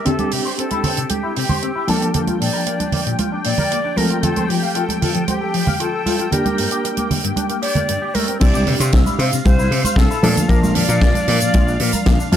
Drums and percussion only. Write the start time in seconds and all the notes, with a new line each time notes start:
0.06 closed hi-hat, low conga
0.19 closed hi-hat, high conga
0.31 open hi-hat
0.59 closed hi-hat
0.70 closed hi-hat, high conga
0.84 open hi-hat, low conga
0.97 closed hi-hat
1.09 closed hi-hat, high conga
1.36 open hi-hat
1.49 high conga, low conga
1.62 closed hi-hat
1.88 open hi-hat, high conga
2.02 closed hi-hat
2.14 closed hi-hat, low conga
2.27 closed hi-hat, high conga
2.42 open hi-hat
2.66 closed hi-hat
2.80 closed hi-hat, high conga
2.92 open hi-hat, low conga
3.07 closed hi-hat
3.19 closed hi-hat, high conga
3.44 open hi-hat
3.58 high conga, low conga
3.72 closed hi-hat
3.97 open hi-hat, high conga
4.10 closed hi-hat
4.23 closed hi-hat, low conga
4.36 closed hi-hat, high conga
4.50 open hi-hat
4.75 closed hi-hat
4.89 closed hi-hat, high conga
5.02 open hi-hat, low conga
5.14 closed hi-hat
5.28 closed hi-hat, high conga
5.54 open hi-hat
5.67 high conga, low conga
5.80 closed hi-hat
6.06 open hi-hat, high conga
6.19 closed hi-hat
6.32 closed hi-hat, low conga
6.46 closed hi-hat, high conga
6.58 open hi-hat
6.71 closed hi-hat
6.85 closed hi-hat
6.97 closed hi-hat, high conga
7.11 open hi-hat, low conga
7.24 closed hi-hat
7.37 closed hi-hat, high conga
7.49 closed hi-hat
7.62 open hi-hat
7.75 closed hi-hat, high conga, low conga
7.89 closed hi-hat
8.15 open hi-hat, high conga
8.28 closed hi-hat
8.41 kick, closed hi-hat, crash, shaker
8.54 high conga, shaker
8.67 open hi-hat, low conga
8.80 closed hi-hat, shaker
8.93 kick, snare, closed hi-hat, shaker
9.06 closed hi-hat, high conga, shaker
9.19 open hi-hat
9.33 closed hi-hat, shaker
9.45 kick, closed hi-hat, high conga, shaker
9.59 shaker
9.72 open hi-hat
9.84 closed hi-hat, high conga, shaker
9.96 kick, snare, closed hi-hat, shaker
10.11 shaker
10.23 open hi-hat, high conga
10.37 closed hi-hat, low conga, shaker
10.49 kick, closed hi-hat, shaker
10.63 high conga, shaker
10.75 open hi-hat, low conga
10.89 closed hi-hat, shaker
11.01 kick, snare, closed hi-hat, shaker
11.14 closed hi-hat, high conga, shaker
11.28 open hi-hat
11.40 closed hi-hat, shaker
11.54 kick, closed hi-hat, high conga, shaker
11.68 shaker
11.80 open hi-hat
11.93 closed hi-hat, high conga, shaker
12.06 kick, snare, closed hi-hat, shaker
12.20 shaker
12.32 open hi-hat, high conga